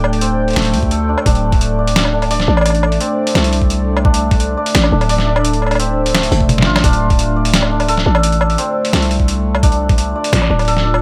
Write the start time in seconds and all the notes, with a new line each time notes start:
Already playing: D1 A3 C4 D4 D5 G5
0.04 low woodblock
0.13 open hi-hat
0.21 C4, closed hi-hat
0.48 open hi-hat
0.50 open hi-hat
0.53 D1, snare, closed hi-hat, open hi-hat
0.56 A3, open hi-hat
0.59 open hi-hat
0.62 open hi-hat
0.65 open hi-hat
0.73 D2, open hi-hat
0.83 kick
0.91 A4, closed hi-hat
1.09 D4
1.18 low woodblock
1.26 D1 D4 D5, kick, closed hi-hat
1.35 closed hi-hat
1.52 kick, open hi-hat
1.61 closed hi-hat
1.79 D5
1.87 open hi-hat
1.96 snare, closed hi-hat
2.05 low woodblock
2.13 D4
2.22 open hi-hat, low woodblock
2.31 D5, open hi-hat
2.40 snare
2.48 A1 D4
2.57 low woodblock
2.61 low woodblock
2.66 closed hi-hat, low woodblock
2.70 low woodblock
2.75 closed hi-hat
2.83 low woodblock
2.92 open hi-hat
3.00 C4, closed hi-hat
3.27 open hi-hat
3.35 C2 A3, snare, closed hi-hat
3.44 open hi-hat
3.53 open hi-hat
3.62 kick
3.70 closed hi-hat
3.97 low woodblock
4.05 D4 E5, kick
4.14 closed hi-hat
4.31 kick, open hi-hat
4.40 closed hi-hat
4.57 D5
4.66 open hi-hat
4.75 A1, snare, closed hi-hat
4.84 low woodblock
4.92 D1 D4
5.01 open hi-hat, low woodblock
5.09 D5, open hi-hat
5.18 snare
5.27 D4
5.36 low woodblock
5.45 closed hi-hat
5.53 closed hi-hat
5.62 low woodblock
5.66 low woodblock
5.71 open hi-hat, low woodblock
5.75 low woodblock
5.79 C4, closed hi-hat
6.06 open hi-hat
6.14 A3, snare, closed hi-hat
6.23 open hi-hat
6.32 F1, open hi-hat
6.41 kick
6.49 closed hi-hat, high tom
6.58 snare
6.62 F4, snare
6.67 A1
6.76 snare, closed hi-hat, low woodblock
6.84 D1 D4 D5, kick, closed hi-hat
6.93 closed hi-hat
7.10 kick, open hi-hat
7.19 closed hi-hat
7.36 D5
7.45 open hi-hat
7.54 snare, closed hi-hat
7.62 low woodblock
7.71 D4
7.80 open hi-hat, low woodblock
7.88 A4, open hi-hat
7.97 snare
8.06 A1 D4
8.15 low woodblock
8.23 closed hi-hat
8.32 closed hi-hat
8.41 low woodblock
8.50 open hi-hat
8.58 C4, closed hi-hat
8.85 open hi-hat
8.93 C2 A3, snare, closed hi-hat
9.02 open hi-hat
9.11 open hi-hat
9.20 kick
9.28 closed hi-hat
9.55 low woodblock
9.63 D4 F4, kick, closed hi-hat
9.72 closed hi-hat
9.89 kick, open hi-hat
9.98 closed hi-hat
10.16 D5
10.24 open hi-hat
10.33 A1, snare, closed hi-hat
10.42 low woodblock
10.50 D1 D4
10.59 open hi-hat, low woodblock
10.62 open hi-hat
10.65 A4, open hi-hat
10.68 open hi-hat
10.77 snare
10.85 D4
10.94 low woodblock